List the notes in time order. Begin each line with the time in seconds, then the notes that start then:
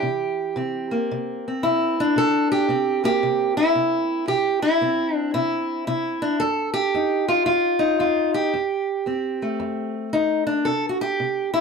Already playing: E3 G4
0.03 C3
0.56 C3 C4
0.91 A#3
1.11 C3
1.48 C4
1.63 C3 E4
2.00 D4
2.16 C3 A4
2.52 G4
2.69 C3 C4
3.04 A#3 G4
3.23 C3
3.57 E4
3.75 C3
4.28 C3 G4
4.62 E4
4.81 C3 C4
5.14 D4
5.34 C3 E4
5.87 C3 E4
6.22 D4
6.40 F2 A4
6.74 G4
6.94 F2 D#4
7.28 F4
7.46 F2 F4
7.79 D#4
7.99 F2 F4
8.34 G4
8.54 F2
9.06 F2 C4
9.42 A3
9.60 F2
10.13 F2 D#4
10.47 D4
10.65 C3 A4
10.89 F#4
11.01 G4
11.20 C3
11.54 E4